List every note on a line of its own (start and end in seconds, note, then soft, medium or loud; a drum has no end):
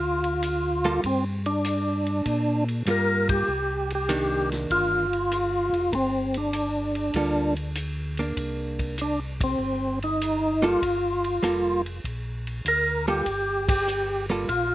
0.00 1.00 D2 medium
0.00 1.01 F4 medium
0.24 ride soft
0.43 hi-hat pedal soft
0.43 ride medium
0.84 1.02 G3 medium
0.84 1.02 A#3 medium
0.84 1.02 F4 medium
0.84 1.02 A4 medium
0.84 ride soft
1.04 2.22 G2 medium
1.04 1.25 C4 medium
1.04 kick soft
1.04 ride medium
1.46 2.64 D4 medium
1.46 ride soft
1.65 hi-hat pedal medium
1.65 ride medium
2.06 ride soft
2.26 2.83 A#2 medium
2.26 kick soft
2.26 ride soft
2.68 ride soft
2.86 3.43 G2 medium
2.86 3.48 G3 medium
2.86 3.49 A#3 medium
2.86 3.49 F4 medium
2.86 hi-hat pedal soft
2.86 ride medium
2.90 3.28 A#4 medium
3.29 3.92 G4 medium
3.29 kick medium
3.29 ride medium
3.48 4.66 C2 medium
3.90 ride soft
3.95 4.50 G4 medium
4.09 5.04 D#3 medium
4.09 5.04 A#3 medium
4.09 5.04 D4 medium
4.09 hi-hat pedal soft
4.09 ride medium
4.52 snare soft
4.52 ride soft
4.70 5.70 G1 medium
4.70 5.92 F4 loud
4.70 kick soft
4.70 ride soft
5.13 ride soft
5.32 hi-hat pedal soft
5.32 ride medium
5.73 5.91 F1 medium
5.73 ride soft
5.92 7.11 G1 medium
5.92 5.95 A#3 medium
5.92 6.37 C4 medium
5.92 kick soft
5.92 ride soft
6.34 7.54 D4 medium
6.34 ride soft
6.53 hi-hat pedal soft
6.53 ride medium
6.95 ride soft
7.14 8.33 D2 medium
7.14 7.53 G3 soft
7.14 7.54 A#3 soft
7.14 7.53 F4 soft
7.14 7.54 A4 soft
7.14 kick soft
7.14 ride medium
7.56 ride soft
7.75 hi-hat pedal soft
7.75 ride medium
8.17 8.95 A#3 medium
8.17 8.95 D4 medium
8.17 ride soft
8.37 9.55 C2 medium
8.37 kick soft
8.37 ride medium
8.79 kick soft
8.79 ride soft
8.98 9.20 D4 medium
8.98 hi-hat pedal medium
8.98 ride medium
9.41 9.99 C4 medium
9.41 kick medium
9.41 ride medium
9.59 10.77 G1 medium
10.02 10.66 D#4 medium
10.02 ride soft
10.21 hi-hat pedal soft
10.21 ride medium
10.62 10.80 G3 medium
10.62 10.80 A#3 medium
10.62 10.80 F4 medium
10.62 11.82 F4 loud
10.62 10.80 A4 medium
10.62 ride soft
10.82 11.39 G1 medium
10.82 kick soft
10.82 ride medium
11.24 ride soft
11.43 12.00 F1 medium
11.43 11.81 G3 medium
11.43 11.81 A#3 medium
11.43 11.81 F4 medium
11.43 11.81 A4 medium
11.43 hi-hat pedal medium
11.43 ride medium
11.86 ride soft
12.04 12.61 A#1 medium
12.04 kick soft
12.04 ride soft
12.47 ride soft
12.65 13.22 D2 medium
12.65 13.06 A#4 medium
12.65 hi-hat pedal soft
12.65 ride medium
13.08 13.25 G3 medium
13.08 13.25 A#3 medium
13.08 13.25 F4 medium
13.08 13.68 G4 medium
13.08 13.25 A4 medium
13.08 ride soft
13.26 14.45 G1 medium
13.26 kick soft
13.26 ride medium
13.69 14.26 G4 medium
13.69 kick medium
13.69 ride medium
13.87 hi-hat pedal medium
14.29 14.47 G3 medium
14.29 14.47 A#3 medium
14.29 14.48 F4 medium
14.29 14.48 A4 medium
14.29 ride soft
14.48 14.75 A#1 medium
14.48 14.75 F4 loud
14.48 kick soft
14.48 ride soft